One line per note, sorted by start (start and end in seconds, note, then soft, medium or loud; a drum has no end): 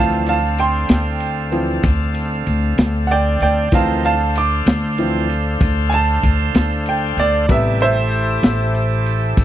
0.00 0.86 D2 medium
0.00 0.37 E3 soft
0.00 0.38 F3 soft
0.00 0.38 C4 soft
0.00 3.69 C4 medium
0.00 3.69 D4 medium
0.00 3.69 A4 medium
0.00 0.26 F5 medium
0.00 3.69 F5 medium
0.00 0.27 A5 medium
0.26 0.57 F5 medium
0.26 0.58 A5 medium
0.26 ride medium
0.58 1.81 G5 medium
0.58 1.81 C6 medium
0.58 ride medium
0.89 1.80 D2 medium
0.89 snare loud
0.89 ride medium
1.20 ride medium
1.52 1.80 E3 soft
1.52 1.81 F3 soft
1.52 1.81 C4 soft
1.52 ride medium
1.83 2.43 D2 medium
1.83 kick loud
1.83 snare soft
1.83 ride medium
2.14 ride medium
2.47 2.76 D2 medium
2.47 ride medium
2.78 3.37 D2 medium
2.78 snare loud
2.78 ride medium
3.07 3.11 F#5 soft
3.07 ride soft
3.11 3.40 D5 medium
3.11 3.41 G5 medium
3.40 3.70 D2 medium
3.40 3.71 D5 medium
3.40 3.72 G5 medium
3.40 ride medium
3.72 4.63 D2 medium
3.72 4.14 E3 soft
3.72 4.14 F3 soft
3.72 4.15 C4 medium
3.72 4.05 D#4 medium
3.72 4.04 A4 medium
3.72 4.05 A#4 medium
3.72 4.04 C5 medium
3.72 4.03 F5 medium
3.72 4.04 A5 medium
3.72 kick loud
3.72 ride medium
4.04 7.46 D4 medium
4.04 7.46 A4 medium
4.04 7.46 C5 medium
4.04 4.34 F5 medium
4.04 7.46 F5 medium
4.04 4.35 A5 medium
4.04 ride medium
4.35 5.58 D6 medium
4.35 ride medium
4.66 5.57 D2 medium
4.66 snare loud
4.66 ride medium
4.98 5.27 E3 soft
4.98 5.27 F3 soft
4.98 5.27 C4 soft
4.98 ride medium
5.30 ride medium
5.61 6.20 D2 medium
5.61 kick loud
5.61 ride medium
5.90 5.93 G#5 medium
5.90 ride medium
5.94 6.85 A5 medium
6.23 6.52 D2 medium
6.23 kick medium
6.23 ride medium
6.55 7.14 D2 loud
6.55 snare loud
6.55 ride medium
6.86 7.18 G5 medium
6.86 ride medium
7.17 7.46 D2 medium
7.17 7.49 D5 medium
7.17 snare soft
7.17 ride medium
7.48 8.39 A1 medium
7.48 7.91 C3 soft
7.48 7.91 G3 soft
7.48 9.45 A3 medium
7.48 7.91 B3 soft
7.48 9.45 E4 medium
7.48 9.45 G4 medium
7.48 9.45 A4 medium
7.48 7.81 E5 medium
7.48 kick loud
7.48 ride medium
7.80 9.45 C5 medium
7.80 9.45 E5 medium
7.80 ride medium
8.12 ride medium
8.43 9.33 A1 medium
8.43 snare loud
8.43 ride medium
8.74 ride medium
9.06 ride medium
9.37 9.45 A1 medium
9.37 kick loud
9.37 ride medium